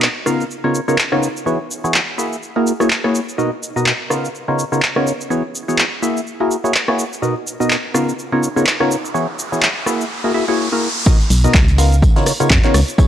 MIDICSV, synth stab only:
0, 0, Header, 1, 2, 480
1, 0, Start_track
1, 0, Tempo, 480000
1, 1463, Time_signature, 4, 2, 24, 8
1, 13075, End_track
2, 0, Start_track
2, 0, Title_t, "Synth stab"
2, 0, Program_c, 0, 62
2, 260, Note_on_c, 0, 59, 64
2, 260, Note_on_c, 0, 63, 70
2, 260, Note_on_c, 0, 65, 69
2, 260, Note_on_c, 0, 70, 71
2, 261, Note_on_c, 0, 49, 71
2, 261, Note_on_c, 0, 77, 82
2, 444, Note_off_c, 0, 63, 0
2, 444, Note_off_c, 0, 65, 0
2, 445, Note_off_c, 0, 49, 0
2, 445, Note_off_c, 0, 59, 0
2, 445, Note_off_c, 0, 70, 0
2, 445, Note_off_c, 0, 77, 0
2, 640, Note_on_c, 0, 63, 83
2, 640, Note_on_c, 0, 73, 101
2, 641, Note_on_c, 0, 49, 85
2, 641, Note_on_c, 0, 59, 86
2, 641, Note_on_c, 0, 65, 78
2, 641, Note_on_c, 0, 70, 83
2, 802, Note_off_c, 0, 49, 0
2, 802, Note_off_c, 0, 59, 0
2, 802, Note_off_c, 0, 63, 0
2, 802, Note_off_c, 0, 65, 0
2, 802, Note_off_c, 0, 70, 0
2, 802, Note_off_c, 0, 73, 0
2, 880, Note_on_c, 0, 65, 88
2, 880, Note_on_c, 0, 70, 84
2, 880, Note_on_c, 0, 73, 105
2, 881, Note_on_c, 0, 49, 94
2, 881, Note_on_c, 0, 59, 89
2, 881, Note_on_c, 0, 63, 86
2, 971, Note_off_c, 0, 73, 0
2, 972, Note_off_c, 0, 49, 0
2, 972, Note_off_c, 0, 59, 0
2, 972, Note_off_c, 0, 63, 0
2, 972, Note_off_c, 0, 65, 0
2, 972, Note_off_c, 0, 70, 0
2, 1120, Note_on_c, 0, 49, 92
2, 1120, Note_on_c, 0, 59, 83
2, 1120, Note_on_c, 0, 63, 88
2, 1120, Note_on_c, 0, 65, 82
2, 1120, Note_on_c, 0, 70, 86
2, 1120, Note_on_c, 0, 73, 104
2, 1282, Note_off_c, 0, 49, 0
2, 1282, Note_off_c, 0, 59, 0
2, 1282, Note_off_c, 0, 63, 0
2, 1282, Note_off_c, 0, 65, 0
2, 1282, Note_off_c, 0, 70, 0
2, 1282, Note_off_c, 0, 73, 0
2, 1461, Note_on_c, 0, 52, 83
2, 1461, Note_on_c, 0, 59, 74
2, 1461, Note_on_c, 0, 64, 73
2, 1461, Note_on_c, 0, 66, 79
2, 1461, Note_on_c, 0, 68, 74
2, 1462, Note_on_c, 0, 73, 89
2, 1587, Note_off_c, 0, 52, 0
2, 1587, Note_off_c, 0, 59, 0
2, 1587, Note_off_c, 0, 64, 0
2, 1587, Note_off_c, 0, 66, 0
2, 1587, Note_off_c, 0, 68, 0
2, 1587, Note_off_c, 0, 73, 0
2, 1841, Note_on_c, 0, 52, 75
2, 1841, Note_on_c, 0, 59, 69
2, 1841, Note_on_c, 0, 64, 67
2, 1841, Note_on_c, 0, 66, 67
2, 1841, Note_on_c, 0, 68, 67
2, 1841, Note_on_c, 0, 73, 79
2, 2002, Note_off_c, 0, 59, 0
2, 2002, Note_off_c, 0, 64, 0
2, 2002, Note_off_c, 0, 66, 0
2, 2002, Note_off_c, 0, 73, 0
2, 2003, Note_off_c, 0, 52, 0
2, 2003, Note_off_c, 0, 68, 0
2, 2180, Note_on_c, 0, 58, 71
2, 2180, Note_on_c, 0, 66, 70
2, 2180, Note_on_c, 0, 76, 83
2, 2181, Note_on_c, 0, 64, 69
2, 2181, Note_on_c, 0, 68, 70
2, 2364, Note_off_c, 0, 66, 0
2, 2365, Note_off_c, 0, 58, 0
2, 2365, Note_off_c, 0, 64, 0
2, 2365, Note_off_c, 0, 68, 0
2, 2365, Note_off_c, 0, 76, 0
2, 2560, Note_on_c, 0, 68, 84
2, 2561, Note_on_c, 0, 58, 86
2, 2561, Note_on_c, 0, 64, 79
2, 2561, Note_on_c, 0, 66, 82
2, 2561, Note_on_c, 0, 70, 98
2, 2722, Note_off_c, 0, 58, 0
2, 2722, Note_off_c, 0, 64, 0
2, 2722, Note_off_c, 0, 66, 0
2, 2722, Note_off_c, 0, 68, 0
2, 2722, Note_off_c, 0, 70, 0
2, 2801, Note_on_c, 0, 58, 94
2, 2801, Note_on_c, 0, 66, 85
2, 2801, Note_on_c, 0, 68, 87
2, 2801, Note_on_c, 0, 73, 104
2, 2802, Note_on_c, 0, 64, 85
2, 2892, Note_off_c, 0, 58, 0
2, 2892, Note_off_c, 0, 64, 0
2, 2892, Note_off_c, 0, 66, 0
2, 2892, Note_off_c, 0, 68, 0
2, 2892, Note_off_c, 0, 73, 0
2, 3041, Note_on_c, 0, 64, 84
2, 3041, Note_on_c, 0, 66, 82
2, 3041, Note_on_c, 0, 68, 81
2, 3041, Note_on_c, 0, 73, 103
2, 3042, Note_on_c, 0, 58, 90
2, 3202, Note_off_c, 0, 68, 0
2, 3202, Note_off_c, 0, 73, 0
2, 3203, Note_off_c, 0, 58, 0
2, 3203, Note_off_c, 0, 64, 0
2, 3203, Note_off_c, 0, 66, 0
2, 3382, Note_on_c, 0, 47, 84
2, 3382, Note_on_c, 0, 59, 78
2, 3382, Note_on_c, 0, 63, 75
2, 3382, Note_on_c, 0, 66, 77
2, 3382, Note_on_c, 0, 70, 77
2, 3382, Note_on_c, 0, 75, 94
2, 3507, Note_off_c, 0, 47, 0
2, 3507, Note_off_c, 0, 59, 0
2, 3507, Note_off_c, 0, 63, 0
2, 3507, Note_off_c, 0, 66, 0
2, 3507, Note_off_c, 0, 70, 0
2, 3507, Note_off_c, 0, 75, 0
2, 3761, Note_on_c, 0, 47, 74
2, 3761, Note_on_c, 0, 59, 68
2, 3761, Note_on_c, 0, 63, 71
2, 3761, Note_on_c, 0, 66, 69
2, 3761, Note_on_c, 0, 70, 65
2, 3761, Note_on_c, 0, 75, 79
2, 3922, Note_off_c, 0, 47, 0
2, 3922, Note_off_c, 0, 66, 0
2, 3923, Note_off_c, 0, 59, 0
2, 3923, Note_off_c, 0, 63, 0
2, 3923, Note_off_c, 0, 70, 0
2, 3923, Note_off_c, 0, 75, 0
2, 4102, Note_on_c, 0, 63, 70
2, 4102, Note_on_c, 0, 70, 69
2, 4102, Note_on_c, 0, 77, 81
2, 4103, Note_on_c, 0, 49, 73
2, 4103, Note_on_c, 0, 59, 70
2, 4103, Note_on_c, 0, 65, 69
2, 4286, Note_off_c, 0, 49, 0
2, 4286, Note_off_c, 0, 59, 0
2, 4286, Note_off_c, 0, 63, 0
2, 4286, Note_off_c, 0, 65, 0
2, 4286, Note_off_c, 0, 70, 0
2, 4286, Note_off_c, 0, 77, 0
2, 4481, Note_on_c, 0, 63, 81
2, 4482, Note_on_c, 0, 49, 92
2, 4482, Note_on_c, 0, 59, 78
2, 4482, Note_on_c, 0, 65, 83
2, 4482, Note_on_c, 0, 70, 85
2, 4482, Note_on_c, 0, 73, 100
2, 4643, Note_off_c, 0, 49, 0
2, 4643, Note_off_c, 0, 59, 0
2, 4643, Note_off_c, 0, 63, 0
2, 4643, Note_off_c, 0, 65, 0
2, 4643, Note_off_c, 0, 70, 0
2, 4643, Note_off_c, 0, 73, 0
2, 4721, Note_on_c, 0, 49, 96
2, 4721, Note_on_c, 0, 59, 89
2, 4721, Note_on_c, 0, 63, 88
2, 4721, Note_on_c, 0, 65, 85
2, 4721, Note_on_c, 0, 70, 89
2, 4722, Note_on_c, 0, 73, 100
2, 4812, Note_off_c, 0, 49, 0
2, 4812, Note_off_c, 0, 59, 0
2, 4812, Note_off_c, 0, 63, 0
2, 4812, Note_off_c, 0, 65, 0
2, 4812, Note_off_c, 0, 70, 0
2, 4812, Note_off_c, 0, 73, 0
2, 4962, Note_on_c, 0, 49, 93
2, 4963, Note_on_c, 0, 59, 85
2, 4963, Note_on_c, 0, 63, 81
2, 4963, Note_on_c, 0, 65, 88
2, 4963, Note_on_c, 0, 70, 82
2, 4963, Note_on_c, 0, 73, 101
2, 5123, Note_off_c, 0, 49, 0
2, 5123, Note_off_c, 0, 59, 0
2, 5123, Note_off_c, 0, 65, 0
2, 5123, Note_off_c, 0, 70, 0
2, 5123, Note_off_c, 0, 73, 0
2, 5124, Note_off_c, 0, 63, 0
2, 5303, Note_on_c, 0, 52, 83
2, 5304, Note_on_c, 0, 59, 81
2, 5304, Note_on_c, 0, 64, 75
2, 5304, Note_on_c, 0, 66, 78
2, 5304, Note_on_c, 0, 68, 75
2, 5304, Note_on_c, 0, 73, 95
2, 5428, Note_off_c, 0, 52, 0
2, 5428, Note_off_c, 0, 59, 0
2, 5428, Note_off_c, 0, 64, 0
2, 5428, Note_off_c, 0, 66, 0
2, 5428, Note_off_c, 0, 68, 0
2, 5428, Note_off_c, 0, 73, 0
2, 5683, Note_on_c, 0, 59, 67
2, 5683, Note_on_c, 0, 64, 65
2, 5683, Note_on_c, 0, 66, 68
2, 5683, Note_on_c, 0, 68, 69
2, 5683, Note_on_c, 0, 73, 80
2, 5684, Note_on_c, 0, 52, 75
2, 5844, Note_off_c, 0, 52, 0
2, 5844, Note_off_c, 0, 59, 0
2, 5844, Note_off_c, 0, 64, 0
2, 5844, Note_off_c, 0, 66, 0
2, 5844, Note_off_c, 0, 68, 0
2, 5844, Note_off_c, 0, 73, 0
2, 6024, Note_on_c, 0, 64, 68
2, 6025, Note_on_c, 0, 58, 76
2, 6025, Note_on_c, 0, 66, 69
2, 6025, Note_on_c, 0, 68, 68
2, 6025, Note_on_c, 0, 76, 82
2, 6207, Note_off_c, 0, 58, 0
2, 6207, Note_off_c, 0, 64, 0
2, 6207, Note_off_c, 0, 66, 0
2, 6207, Note_off_c, 0, 68, 0
2, 6207, Note_off_c, 0, 76, 0
2, 6403, Note_on_c, 0, 66, 84
2, 6404, Note_on_c, 0, 58, 89
2, 6404, Note_on_c, 0, 64, 81
2, 6404, Note_on_c, 0, 68, 84
2, 6404, Note_on_c, 0, 70, 100
2, 6564, Note_off_c, 0, 58, 0
2, 6564, Note_off_c, 0, 64, 0
2, 6564, Note_off_c, 0, 66, 0
2, 6564, Note_off_c, 0, 68, 0
2, 6564, Note_off_c, 0, 70, 0
2, 6642, Note_on_c, 0, 58, 94
2, 6642, Note_on_c, 0, 64, 85
2, 6642, Note_on_c, 0, 66, 85
2, 6642, Note_on_c, 0, 68, 87
2, 6642, Note_on_c, 0, 73, 104
2, 6732, Note_off_c, 0, 64, 0
2, 6732, Note_off_c, 0, 66, 0
2, 6732, Note_off_c, 0, 68, 0
2, 6732, Note_off_c, 0, 73, 0
2, 6733, Note_off_c, 0, 58, 0
2, 6882, Note_on_c, 0, 58, 90
2, 6882, Note_on_c, 0, 64, 85
2, 6882, Note_on_c, 0, 66, 85
2, 6882, Note_on_c, 0, 68, 83
2, 6882, Note_on_c, 0, 73, 98
2, 7043, Note_off_c, 0, 58, 0
2, 7043, Note_off_c, 0, 64, 0
2, 7043, Note_off_c, 0, 66, 0
2, 7043, Note_off_c, 0, 68, 0
2, 7043, Note_off_c, 0, 73, 0
2, 7223, Note_on_c, 0, 59, 74
2, 7223, Note_on_c, 0, 63, 76
2, 7223, Note_on_c, 0, 66, 77
2, 7223, Note_on_c, 0, 70, 77
2, 7223, Note_on_c, 0, 75, 93
2, 7224, Note_on_c, 0, 47, 84
2, 7348, Note_off_c, 0, 47, 0
2, 7348, Note_off_c, 0, 59, 0
2, 7348, Note_off_c, 0, 63, 0
2, 7348, Note_off_c, 0, 66, 0
2, 7348, Note_off_c, 0, 70, 0
2, 7348, Note_off_c, 0, 75, 0
2, 7602, Note_on_c, 0, 59, 67
2, 7602, Note_on_c, 0, 63, 67
2, 7602, Note_on_c, 0, 70, 69
2, 7602, Note_on_c, 0, 75, 84
2, 7603, Note_on_c, 0, 47, 77
2, 7603, Note_on_c, 0, 66, 66
2, 7763, Note_off_c, 0, 47, 0
2, 7763, Note_off_c, 0, 59, 0
2, 7763, Note_off_c, 0, 63, 0
2, 7763, Note_off_c, 0, 66, 0
2, 7763, Note_off_c, 0, 70, 0
2, 7763, Note_off_c, 0, 75, 0
2, 7944, Note_on_c, 0, 49, 76
2, 7944, Note_on_c, 0, 59, 68
2, 7944, Note_on_c, 0, 63, 68
2, 7944, Note_on_c, 0, 65, 69
2, 7945, Note_on_c, 0, 70, 67
2, 7945, Note_on_c, 0, 77, 82
2, 8126, Note_off_c, 0, 49, 0
2, 8127, Note_off_c, 0, 59, 0
2, 8127, Note_off_c, 0, 63, 0
2, 8127, Note_off_c, 0, 65, 0
2, 8127, Note_off_c, 0, 70, 0
2, 8127, Note_off_c, 0, 77, 0
2, 8324, Note_on_c, 0, 49, 90
2, 8324, Note_on_c, 0, 59, 81
2, 8324, Note_on_c, 0, 63, 84
2, 8324, Note_on_c, 0, 65, 82
2, 8324, Note_on_c, 0, 70, 82
2, 8324, Note_on_c, 0, 73, 99
2, 8484, Note_off_c, 0, 49, 0
2, 8484, Note_off_c, 0, 59, 0
2, 8484, Note_off_c, 0, 63, 0
2, 8484, Note_off_c, 0, 65, 0
2, 8484, Note_off_c, 0, 70, 0
2, 8484, Note_off_c, 0, 73, 0
2, 8563, Note_on_c, 0, 59, 87
2, 8563, Note_on_c, 0, 63, 91
2, 8563, Note_on_c, 0, 70, 89
2, 8564, Note_on_c, 0, 49, 95
2, 8564, Note_on_c, 0, 65, 90
2, 8564, Note_on_c, 0, 73, 102
2, 8653, Note_off_c, 0, 49, 0
2, 8653, Note_off_c, 0, 59, 0
2, 8653, Note_off_c, 0, 63, 0
2, 8653, Note_off_c, 0, 65, 0
2, 8653, Note_off_c, 0, 70, 0
2, 8653, Note_off_c, 0, 73, 0
2, 8803, Note_on_c, 0, 49, 92
2, 8803, Note_on_c, 0, 59, 87
2, 8803, Note_on_c, 0, 63, 88
2, 8803, Note_on_c, 0, 65, 85
2, 8803, Note_on_c, 0, 70, 81
2, 8803, Note_on_c, 0, 73, 105
2, 8963, Note_off_c, 0, 49, 0
2, 8963, Note_off_c, 0, 59, 0
2, 8963, Note_off_c, 0, 63, 0
2, 8963, Note_off_c, 0, 65, 0
2, 8964, Note_off_c, 0, 70, 0
2, 8964, Note_off_c, 0, 73, 0
2, 9143, Note_on_c, 0, 52, 86
2, 9143, Note_on_c, 0, 66, 80
2, 9143, Note_on_c, 0, 68, 76
2, 9144, Note_on_c, 0, 59, 76
2, 9144, Note_on_c, 0, 64, 80
2, 9144, Note_on_c, 0, 73, 95
2, 9268, Note_off_c, 0, 52, 0
2, 9268, Note_off_c, 0, 59, 0
2, 9268, Note_off_c, 0, 64, 0
2, 9268, Note_off_c, 0, 66, 0
2, 9268, Note_off_c, 0, 68, 0
2, 9268, Note_off_c, 0, 73, 0
2, 9522, Note_on_c, 0, 59, 66
2, 9522, Note_on_c, 0, 66, 69
2, 9522, Note_on_c, 0, 68, 66
2, 9523, Note_on_c, 0, 52, 77
2, 9523, Note_on_c, 0, 64, 66
2, 9523, Note_on_c, 0, 73, 79
2, 9683, Note_off_c, 0, 52, 0
2, 9683, Note_off_c, 0, 59, 0
2, 9683, Note_off_c, 0, 64, 0
2, 9683, Note_off_c, 0, 66, 0
2, 9683, Note_off_c, 0, 68, 0
2, 9683, Note_off_c, 0, 73, 0
2, 9864, Note_on_c, 0, 58, 74
2, 9864, Note_on_c, 0, 64, 70
2, 9864, Note_on_c, 0, 66, 68
2, 9864, Note_on_c, 0, 68, 72
2, 9864, Note_on_c, 0, 76, 81
2, 10046, Note_off_c, 0, 58, 0
2, 10046, Note_off_c, 0, 64, 0
2, 10046, Note_off_c, 0, 66, 0
2, 10046, Note_off_c, 0, 68, 0
2, 10046, Note_off_c, 0, 76, 0
2, 10242, Note_on_c, 0, 58, 90
2, 10242, Note_on_c, 0, 64, 81
2, 10242, Note_on_c, 0, 68, 84
2, 10242, Note_on_c, 0, 70, 100
2, 10243, Note_on_c, 0, 66, 83
2, 10323, Note_off_c, 0, 58, 0
2, 10323, Note_off_c, 0, 64, 0
2, 10323, Note_off_c, 0, 66, 0
2, 10323, Note_off_c, 0, 68, 0
2, 10323, Note_off_c, 0, 70, 0
2, 10343, Note_on_c, 0, 58, 74
2, 10343, Note_on_c, 0, 64, 73
2, 10343, Note_on_c, 0, 66, 66
2, 10343, Note_on_c, 0, 68, 71
2, 10343, Note_on_c, 0, 76, 84
2, 10449, Note_off_c, 0, 58, 0
2, 10449, Note_off_c, 0, 64, 0
2, 10449, Note_off_c, 0, 66, 0
2, 10449, Note_off_c, 0, 68, 0
2, 10449, Note_off_c, 0, 76, 0
2, 10483, Note_on_c, 0, 58, 93
2, 10483, Note_on_c, 0, 64, 83
2, 10483, Note_on_c, 0, 66, 83
2, 10483, Note_on_c, 0, 73, 99
2, 10484, Note_on_c, 0, 68, 84
2, 10689, Note_off_c, 0, 58, 0
2, 10689, Note_off_c, 0, 66, 0
2, 10689, Note_off_c, 0, 73, 0
2, 10690, Note_off_c, 0, 64, 0
2, 10690, Note_off_c, 0, 68, 0
2, 10724, Note_on_c, 0, 58, 77
2, 10724, Note_on_c, 0, 64, 70
2, 10724, Note_on_c, 0, 66, 72
2, 10724, Note_on_c, 0, 68, 71
2, 10724, Note_on_c, 0, 70, 85
2, 10884, Note_off_c, 0, 58, 0
2, 10884, Note_off_c, 0, 64, 0
2, 10884, Note_off_c, 0, 66, 0
2, 10884, Note_off_c, 0, 68, 0
2, 10884, Note_off_c, 0, 70, 0
2, 11063, Note_on_c, 0, 59, 76
2, 11063, Note_on_c, 0, 63, 78
2, 11063, Note_on_c, 0, 66, 81
2, 11063, Note_on_c, 0, 70, 80
2, 11063, Note_on_c, 0, 75, 98
2, 11064, Note_on_c, 0, 47, 88
2, 11188, Note_off_c, 0, 47, 0
2, 11188, Note_off_c, 0, 59, 0
2, 11188, Note_off_c, 0, 63, 0
2, 11188, Note_off_c, 0, 66, 0
2, 11188, Note_off_c, 0, 70, 0
2, 11188, Note_off_c, 0, 75, 0
2, 11443, Note_on_c, 0, 47, 77
2, 11443, Note_on_c, 0, 59, 70
2, 11443, Note_on_c, 0, 75, 85
2, 11444, Note_on_c, 0, 63, 70
2, 11444, Note_on_c, 0, 66, 74
2, 11444, Note_on_c, 0, 70, 73
2, 11604, Note_off_c, 0, 47, 0
2, 11604, Note_off_c, 0, 59, 0
2, 11604, Note_off_c, 0, 63, 0
2, 11604, Note_off_c, 0, 66, 0
2, 11604, Note_off_c, 0, 70, 0
2, 11604, Note_off_c, 0, 75, 0
2, 11783, Note_on_c, 0, 49, 77
2, 11783, Note_on_c, 0, 59, 71
2, 11783, Note_on_c, 0, 63, 67
2, 11783, Note_on_c, 0, 65, 73
2, 11783, Note_on_c, 0, 70, 70
2, 11783, Note_on_c, 0, 77, 87
2, 11966, Note_off_c, 0, 49, 0
2, 11966, Note_off_c, 0, 59, 0
2, 11966, Note_off_c, 0, 63, 0
2, 11966, Note_off_c, 0, 65, 0
2, 11966, Note_off_c, 0, 70, 0
2, 11966, Note_off_c, 0, 77, 0
2, 12162, Note_on_c, 0, 49, 91
2, 12162, Note_on_c, 0, 59, 83
2, 12162, Note_on_c, 0, 65, 85
2, 12162, Note_on_c, 0, 70, 86
2, 12162, Note_on_c, 0, 73, 108
2, 12163, Note_on_c, 0, 63, 90
2, 12323, Note_off_c, 0, 49, 0
2, 12323, Note_off_c, 0, 59, 0
2, 12323, Note_off_c, 0, 63, 0
2, 12323, Note_off_c, 0, 65, 0
2, 12323, Note_off_c, 0, 70, 0
2, 12323, Note_off_c, 0, 73, 0
2, 12402, Note_on_c, 0, 49, 100
2, 12402, Note_on_c, 0, 59, 88
2, 12402, Note_on_c, 0, 63, 91
2, 12402, Note_on_c, 0, 65, 90
2, 12402, Note_on_c, 0, 70, 91
2, 12402, Note_on_c, 0, 73, 108
2, 12492, Note_off_c, 0, 49, 0
2, 12492, Note_off_c, 0, 59, 0
2, 12492, Note_off_c, 0, 63, 0
2, 12492, Note_off_c, 0, 65, 0
2, 12492, Note_off_c, 0, 70, 0
2, 12492, Note_off_c, 0, 73, 0
2, 12642, Note_on_c, 0, 65, 86
2, 12642, Note_on_c, 0, 70, 88
2, 12643, Note_on_c, 0, 49, 96
2, 12643, Note_on_c, 0, 59, 86
2, 12643, Note_on_c, 0, 63, 88
2, 12643, Note_on_c, 0, 73, 106
2, 12803, Note_off_c, 0, 49, 0
2, 12803, Note_off_c, 0, 59, 0
2, 12803, Note_off_c, 0, 63, 0
2, 12803, Note_off_c, 0, 65, 0
2, 12803, Note_off_c, 0, 70, 0
2, 12803, Note_off_c, 0, 73, 0
2, 12982, Note_on_c, 0, 52, 91
2, 12982, Note_on_c, 0, 68, 80
2, 12983, Note_on_c, 0, 59, 80
2, 12983, Note_on_c, 0, 64, 78
2, 12983, Note_on_c, 0, 66, 82
2, 12983, Note_on_c, 0, 73, 100
2, 13075, Note_off_c, 0, 52, 0
2, 13075, Note_off_c, 0, 59, 0
2, 13075, Note_off_c, 0, 64, 0
2, 13075, Note_off_c, 0, 66, 0
2, 13075, Note_off_c, 0, 68, 0
2, 13075, Note_off_c, 0, 73, 0
2, 13075, End_track
0, 0, End_of_file